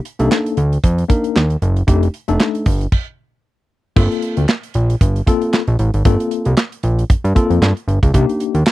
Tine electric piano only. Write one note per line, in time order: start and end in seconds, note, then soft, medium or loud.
0.19 0.57 A#3 medium
0.19 0.57 D4 medium
0.19 0.57 D#4 medium
0.19 0.57 A4 medium
1.09 1.43 A#3 medium
1.09 1.43 D4 medium
1.09 1.43 D#4 medium
1.09 1.43 A#4 medium
1.87 2.05 A3 medium
1.87 2.05 D4 medium
1.87 2.06 D#4 medium
1.87 2.06 G4 medium
2.28 2.65 A3 medium
2.28 2.65 D4 medium
2.28 2.65 D#4 medium
2.28 2.66 A4 loud
3.96 4.41 A#3 medium
3.96 4.41 C4 medium
3.96 4.42 F4 medium
3.96 4.42 A4 medium
5.27 5.61 A#3 medium
5.27 5.61 C4 medium
5.27 5.61 F4 medium
5.27 5.61 A4 loud
6.05 6.50 A#3 medium
6.05 6.50 C4 medium
6.05 6.50 F4 medium
6.05 6.51 A4 medium
7.35 7.69 A#3 loud
7.35 7.69 C4 medium
7.35 7.70 F4 medium
7.35 7.70 A4 loud
8.14 8.59 A#3 medium
8.14 8.59 D4 medium
8.14 8.59 D#4 medium
8.14 8.59 G4 medium